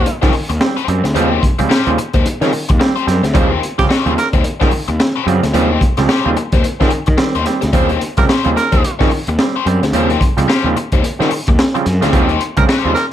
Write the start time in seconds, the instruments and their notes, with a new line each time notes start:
Already playing: tenor saxophone G4
0.06 muted overdriven electric guitar stroke, muted picked electric bass stroke, closed hi-hat
0.22 clav C#3 F3 G3 C4, picked electric bass D#3, overdriven electric guitar C#4 G4 C#5, kick, snare, closed hi-hat
0.33 muted overdriven electric guitar stroke, open hi-hat
0.49 picked electric bass D#2, muted overdriven electric guitar stroke, closed hi-hat
0.60 clav G3 C4, muted overdriven electric guitar stroke, snare
0.77 overdriven electric guitar C#4 G4 C5, closed hi-hat
0.87 picked electric bass F#2, clav G3 C4, muted overdriven electric guitar stroke, closed hi-hat
1.04 picked electric bass D2, muted overdriven electric guitar stroke, snare, closed hi-hat
1.14 picked electric bass D#2, clav C#3 F3 G3 C4, overdriven electric guitar C4 F#4 B4, closed hi-hat
1.25 overdriven electric guitar C#4 G4 C5
1.43 kick, closed hi-hat
1.59 picked electric bass C#2, clav C#3 F3 G3 C4, muted overdriven electric guitar stroke, closed hi-hat
1.69 overdriven electric guitar C#4 G4 C5, muted picked electric bass stroke, snare
1.86 picked electric bass D#2, clav C#3 F3 G3 C4, closed hi-hat
1.98 muted overdriven electric guitar stroke, closed hi-hat
2.13 picked electric bass D#2, overdriven electric guitar C#4 G4 C5, kick, closed hi-hat
2.25 muted overdriven electric guitar stroke, muted picked electric bass stroke, closed hi-hat
2.41 clav C#3 F3 G3 C4, picked electric bass D#3, overdriven electric guitar C#4 G4 C#5, snare, closed hi-hat
2.52 muted overdriven electric guitar stroke, open hi-hat
2.69 picked electric bass D#2, muted overdriven electric guitar stroke, kick, closed hi-hat
2.79 clav G3 C4, muted overdriven electric guitar stroke, snare
2.96 overdriven electric guitar C#4 G4 C5, closed hi-hat
3.06 picked electric bass F#2, clav G3 C4, muted overdriven electric guitar stroke, snare, closed hi-hat
3.23 picked electric bass D2, muted overdriven electric guitar stroke, snare, closed hi-hat
3.33 picked electric bass D#2, clav C#3 F3 G3 C4, overdriven electric guitar C#4 G4 C5, kick, closed hi-hat
3.63 closed hi-hat
3.78 picked electric bass C#2, clav C#3 F3 G3 C4, tenor saxophone G4, muted overdriven electric guitar stroke, kick, snare, closed hi-hat
3.89 overdriven electric guitar C#4 G4 C5, muted picked electric bass stroke, snare
4.05 picked electric bass D#2, clav C#3 F3 G3 C4, closed hi-hat
4.17 tenor saxophone A#4, muted overdriven electric guitar stroke, snare, closed hi-hat
4.33 picked electric bass D#2, overdriven electric guitar C#4 G4 C5, kick, closed hi-hat
4.44 muted overdriven electric guitar stroke, muted picked electric bass stroke, closed hi-hat
4.60 clav C#3 F3 G3 C4, picked electric bass D#3, overdriven electric guitar C#4 G4 C#5, kick, snare
4.71 muted overdriven electric guitar stroke, open hi-hat
4.88 picked electric bass D#2, muted overdriven electric guitar stroke, closed hi-hat
5.00 muted overdriven electric guitar stroke, snare
5.16 overdriven electric guitar C#4 G4 C5
5.27 picked electric bass F#2, clav C#3 F3 G3 C4, muted overdriven electric guitar stroke, closed hi-hat
5.43 picked electric bass D2, muted overdriven electric guitar stroke, snare, closed hi-hat
5.53 picked electric bass D#2, clav C#3 F3 G3 C4, overdriven electric guitar C4 F#4 B4, closed hi-hat
5.64 overdriven electric guitar C#4 G4 C5
5.81 kick, closed hi-hat
5.97 picked electric bass C#2, clav C#3 F3 G3 C4, muted overdriven electric guitar stroke, snare, closed hi-hat
6.09 overdriven electric guitar C#4 G4 C5, muted picked electric bass stroke, snare
6.25 picked electric bass D#2, clav C#3 F3 G3 C4
6.37 muted overdriven electric guitar stroke, closed hi-hat
6.52 picked electric bass D#2, overdriven electric guitar C#4 G4 C5, kick, closed hi-hat
6.64 muted overdriven electric guitar stroke, closed hi-hat
6.80 clav C#3 F3 G3 C4, picked electric bass D#3, overdriven electric guitar C#4 G4 C#5, kick, snare
6.90 muted overdriven electric guitar stroke, closed hi-hat
7.06 picked electric bass D#3, muted overdriven electric guitar stroke, kick, closed hi-hat
7.17 picked electric bass D#3, clav G3 C4, muted overdriven electric guitar stroke, snare
7.35 picked electric bass D#2, overdriven electric guitar C#4 G4 C5, closed hi-hat
7.45 clav G3 C4, muted overdriven electric guitar stroke, snare, closed hi-hat
7.61 picked electric bass D2, muted overdriven electric guitar stroke, snare, closed hi-hat
7.73 picked electric bass D#2, clav C#3 F3 G3 C4, overdriven electric guitar C#4 G4 C5, kick, closed hi-hat
7.89 closed hi-hat
8.01 closed hi-hat
8.17 picked electric bass C#2, clav C#3 F3 G3 C4, tenor saxophone A#4, muted overdriven electric guitar stroke, kick, closed hi-hat
8.29 overdriven electric guitar C#4 G4 C5, muted picked electric bass stroke, snare
8.44 picked electric bass D#2, clav C#3 F3 G3 C4, closed hi-hat
8.56 tenor saxophone A#4, muted overdriven electric guitar stroke, snare, closed hi-hat
8.72 picked electric bass D#2, overdriven electric guitar C#4 G4 C5, kick, closed hi-hat
8.83 muted overdriven electric guitar stroke, muted picked electric bass stroke, closed hi-hat
8.99 clav C#3 F3 G3 C4, picked electric bass D#3, overdriven electric guitar C#4 G4 C#5, kick, snare
9.11 muted overdriven electric guitar stroke, open hi-hat
9.27 picked electric bass D#2, muted overdriven electric guitar stroke, closed hi-hat
9.39 clav G3 C4, muted overdriven electric guitar stroke, snare
9.56 overdriven electric guitar C#4 G4 C5
9.66 picked electric bass F#2, clav G3 C4, muted overdriven electric guitar stroke, closed hi-hat
9.83 picked electric bass D2, muted overdriven electric guitar stroke, snare, closed hi-hat
9.93 picked electric bass D#2, clav C#3 F3 G3 C4, overdriven electric guitar C#4 G4 C5, closed hi-hat
10.10 closed hi-hat
10.21 kick, closed hi-hat
10.37 picked electric bass C#2, clav C#3 F3 G3 C4, muted overdriven electric guitar stroke, closed hi-hat
10.48 overdriven electric guitar C#4 G4 C5, muted picked electric bass stroke, snare
10.64 picked electric bass D#2, clav C#3 F3 G3 C4
10.76 muted overdriven electric guitar stroke, closed hi-hat
10.92 picked electric bass D#2, overdriven electric guitar C#4 G4 C5, kick, closed hi-hat
11.03 muted picked electric bass stroke, muted overdriven electric guitar stroke, closed hi-hat
11.19 clav C#3 F3 G3 C4, picked electric bass D#3, overdriven electric guitar C#4 G4 C#5, snare
11.31 muted overdriven electric guitar stroke, open hi-hat
11.47 picked electric bass D#2, muted overdriven electric guitar stroke, kick, closed hi-hat
11.59 muted overdriven electric guitar stroke, snare
11.74 clav C#3 F3 G3 C4, muted overdriven electric guitar stroke, closed hi-hat
11.86 picked electric bass F#2, snare, closed hi-hat
12.01 picked electric bass D2, clav C#3 F3 G3 C4, overdriven electric guitar C#4 G4 C5, snare, closed hi-hat
12.12 picked electric bass D#2, clav C#3 F3 G3 C4, overdriven electric guitar C4 G4 C5, kick, closed hi-hat
12.25 overdriven electric guitar C#4, closed hi-hat
12.41 closed hi-hat
12.57 picked electric bass C#2, clav C#3 F3 G3 C4, tenor saxophone A#4, muted overdriven electric guitar stroke, kick, closed hi-hat
12.68 overdriven electric guitar C#4 G4 C5, muted picked electric bass stroke, snare
12.84 picked electric bass D#2, clav C#3 F3 G3 C4
12.94 tenor saxophone A#4, muted overdriven electric guitar stroke, snare, closed hi-hat